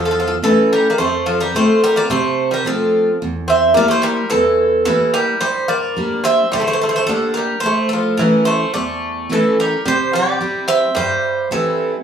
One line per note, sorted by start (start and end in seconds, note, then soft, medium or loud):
0.00 0.41 E2 medium
0.05 0.11 F3 soft
0.05 0.10 A4 medium
0.11 0.19 F3 soft
0.11 0.19 A4 medium
0.20 0.26 F3 medium
0.20 0.26 A4 medium
0.28 0.34 F3 soft
0.28 0.34 A4 medium
0.42 0.70 E3 medium
0.42 0.87 A3 medium
0.42 0.88 C#4 soft
0.42 0.87 E4 soft
0.42 0.72 A4 medium
0.73 0.91 G3 medium
0.73 0.89 A#4 medium
0.90 0.98 A#3 medium
0.90 0.98 D5 medium
0.98 1.53 F2 medium
0.98 1.25 A3 medium
0.98 1.24 C5 medium
1.26 1.39 F3 medium
1.26 1.41 A4 medium
1.40 1.54 G3 medium
1.40 1.55 A#4 medium
1.55 1.99 A3 soft
1.55 1.81 A3 medium
1.55 1.99 C4 soft
1.55 1.99 F4 medium
1.55 1.83 C5 medium
1.83 1.96 G3 medium
1.83 1.96 A#4 medium
1.96 2.09 A#3 medium
1.96 2.10 D5 medium
2.10 2.64 C3 medium
2.10 2.49 A3 medium
2.10 2.53 C5 medium
2.51 2.64 G3 medium
2.51 2.65 A#4 medium
2.64 3.17 F3 medium
2.64 3.09 A3 soft
2.64 3.09 C4 soft
2.64 3.10 F4 soft
2.64 3.18 A4 medium
3.22 3.75 E2 medium
3.48 3.74 C4 medium
3.48 3.75 E5 medium
3.74 4.21 G3 soft
3.74 3.88 A#3 medium
3.74 4.21 A#3 medium
3.74 4.21 E4 medium
3.74 3.90 D5 loud
3.88 4.02 A3 medium
3.88 4.03 C5 medium
4.02 4.29 G3 medium
4.02 4.30 A#4 medium
4.30 4.86 E2 medium
4.30 4.82 E3 medium
4.30 4.84 A4 medium
4.85 5.12 E3 medium
4.85 5.32 G3 soft
4.85 5.31 A#3 soft
4.85 5.32 E4 medium
4.85 5.12 A4 medium
5.14 5.40 G3 medium
5.14 5.40 A#4 medium
5.41 5.96 G2 medium
5.41 5.68 G3 medium
5.41 5.67 C5 medium
5.68 6.21 A#3 medium
5.68 6.21 D5 medium
5.97 6.42 G3 soft
5.97 6.42 A#3 soft
5.97 6.42 D4 medium
6.24 6.50 C4 medium
6.24 6.53 E5 loud
6.52 7.07 D3 medium
6.52 6.59 G3 medium
6.52 6.60 C5 medium
6.60 6.66 A3 medium
6.60 6.67 C5 medium
6.67 6.72 A3 medium
6.67 6.72 C5 medium
6.73 6.82 A3 soft
6.73 6.80 C5 medium
6.81 6.88 A3 medium
6.81 6.88 C5 medium
6.89 6.96 A3 soft
6.89 6.95 C5 medium
6.96 7.05 A3 medium
6.96 7.04 C5 medium
7.07 7.35 D3 medium
7.07 7.52 G3 soft
7.07 7.53 A#3 soft
7.07 7.53 D4 medium
7.07 7.33 A4 medium
7.34 7.63 G3 medium
7.34 7.61 A#4 medium
7.60 8.18 A2 medium
7.60 7.88 C5 medium
7.66 7.91 A3 medium
7.89 8.17 A4 medium
7.93 8.18 F3 medium
8.17 8.63 E3 soft
8.17 8.45 E3 medium
8.17 8.64 A3 soft
8.17 8.64 C#4 medium
8.17 8.47 A#4 medium
8.45 8.72 A3 medium
8.45 8.72 C5 medium
8.74 9.29 E2 medium
8.74 9.53 A3 medium
8.74 9.54 D5 medium
9.29 9.74 E3 medium
9.29 9.57 E3 medium
9.29 9.75 A3 soft
9.29 9.75 C#4 soft
9.29 9.57 A4 medium
9.60 9.84 G3 medium
9.60 9.88 A#4 medium
9.85 10.39 C3 medium
9.85 10.11 G3 medium
9.85 10.13 C5 medium
10.13 10.65 G3 medium
10.13 10.66 D5 medium
10.41 10.85 G3 soft
10.41 10.86 C4 soft
10.41 10.86 E4 medium
10.68 10.94 C4 medium
10.68 10.94 E5 loud
10.95 11.50 G2 medium
10.95 11.47 G3 medium
10.95 11.48 C5 medium
11.51 11.91 E3 medium
11.51 11.96 G3 soft
11.51 11.96 C4 soft
11.51 11.96 E4 medium
11.51 11.91 A4 medium